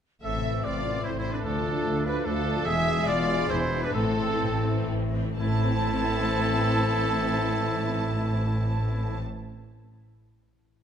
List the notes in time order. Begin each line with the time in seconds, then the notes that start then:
0.23 A1 A2 A3 C4 A4 E5
0.34 C3
0.43 E3 C4
0.64 A1 A2 F4 A4 D5
0.75 C5
0.84 E3 C4
0.94 A5
1.03 A1 A2 A3 C4 E4 C5 E5
1.14 E4 C5
1.18 E4 C5
1.24 E3 C4 A4
1.30 D4 B4
1.35 E4
1.44 D2 D3 F3 A3 D4 F4 A4
1.55 A3
1.67 F3 A3
1.74 F4
1.86 D2
1.94 D5
2.05 F3 A3 D4 B4 F5
2.15 A5
2.25 D2 A3 D4 F4 A4 F5
2.36 D5
2.46 F3 A3 A4
2.56 F4
2.65 E1 E2 G#3 G#4 E5
2.76 B2
2.88 E3 G#3
2.97 G#4
3.06 E1 E2 F4 D5
3.17 E5
3.28 E3 G#3 G#5
3.39 B5
3.49 E1 E2 B2 E4 C5 G#5
3.60 E5
3.72 E3 G#3 B4
3.82 D4 G#4 B4
3.93 A1 A2 E3 C4 E4 A4
4.06 E3
4.17 E3 C4
4.29 E4
4.39 A1 A2 A4
4.64 E3 C4 E5
4.75 A5
4.87 A1 A2 E5
5.00 C5
5.12 E3 C4 A4
5.25 E4
5.37 A1 A2 E3 C4 E4 A4 A5
5.44 A3
5.51 C4
5.59 E4
5.65 A4
5.72 E5